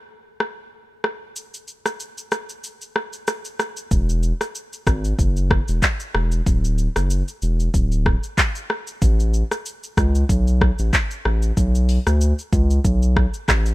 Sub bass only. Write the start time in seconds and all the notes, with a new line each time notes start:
3.91 E1
4.87 G#1
5.19 F#1
5.68 E1
6.15 E1
6.46 D1
6.96 F#1
7.42 E1
7.74 D1
9.02 A1
9.97 C#2
10.29 B1
10.79 A1
11.25 A1
11.57 B1
12.07 D2
12.53 C#2
12.85 B1
13.48 A1